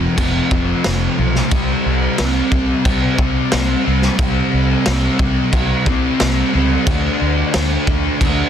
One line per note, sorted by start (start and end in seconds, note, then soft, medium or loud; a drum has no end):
0.00 0.16 F2 medium
0.00 0.17 C3 medium
0.00 0.19 F3 medium
0.17 0.39 F1 medium
0.17 0.85 F2 loud
0.17 0.53 C3 medium
0.17 0.50 F3 loud
0.17 kick loud
0.17 crash medium
0.51 0.72 F1 medium
0.51 1.19 C3 medium
0.51 1.16 F3 medium
0.51 kick loud
0.84 1.07 F1 medium
0.84 snare medium
0.84 crash medium
1.17 1.40 B1 medium
1.17 1.49 C3 medium
1.17 1.49 F3 medium
1.35 snare soft
1.51 1.73 C2 medium
1.51 2.18 C3 loud
1.51 2.19 G3 loud
1.51 2.21 C4 loud
1.51 kick loud
1.51 crash medium
1.86 2.06 C2 medium
2.18 2.40 C2 medium
2.18 2.84 C3 medium
2.18 2.85 G3 medium
2.18 2.86 C4 medium
2.18 snare loud
2.18 crash medium
2.52 2.73 C2 medium
2.52 kick medium
2.85 3.06 C2 medium
2.85 3.52 C3 medium
2.85 3.20 G3 loud
2.85 3.17 C4 loud
2.85 kick loud
2.85 crash medium
3.18 3.40 C2 medium
3.18 3.87 G3 medium
3.18 3.84 C4 medium
3.18 kick loud
3.52 3.74 C2 loud
3.52 snare loud
3.52 crash medium
3.85 4.07 C2 medium
3.85 4.19 G3 medium
3.85 4.20 C4 medium
4.02 snare soft
4.18 4.40 C2 loud
4.18 4.84 C3 loud
4.18 4.85 G3 loud
4.18 4.87 C4 loud
4.18 kick loud
4.18 crash medium
4.53 4.74 C2 medium
4.85 5.07 C2 medium
4.85 5.51 C3 medium
4.85 5.52 G3 medium
4.85 5.54 C4 medium
4.85 snare loud
4.85 crash medium
5.19 5.40 C2 loud
5.19 kick medium
5.52 5.74 C2 medium
5.52 6.19 C3 loud
5.52 5.87 G3 loud
5.52 5.84 C4 loud
5.52 kick loud
5.52 crash medium
5.86 6.07 C2 medium
5.86 6.55 G3 medium
5.86 6.52 C4 medium
5.86 kick medium
6.20 6.41 C2 medium
6.20 snare loud
6.20 crash medium
6.53 6.75 C#2 medium
6.53 6.86 G3 medium
6.53 6.85 C4 medium
6.87 7.08 D2 medium
6.87 7.52 D3 loud
6.87 7.54 A3 loud
6.87 7.55 D4 loud
6.87 kick loud
6.87 crash medium
7.21 7.42 D2 medium
7.53 7.75 D2 medium
7.53 8.19 D3 medium
7.53 8.20 A3 medium
7.53 8.22 D4 medium
7.53 snare loud
7.53 crash medium
7.87 8.08 D2 medium
7.87 kick loud
8.20 8.42 D2 loud
8.20 8.49 D3 loud
8.20 8.49 A3 loud
8.20 8.49 D4 loud
8.20 kick medium
8.20 crash medium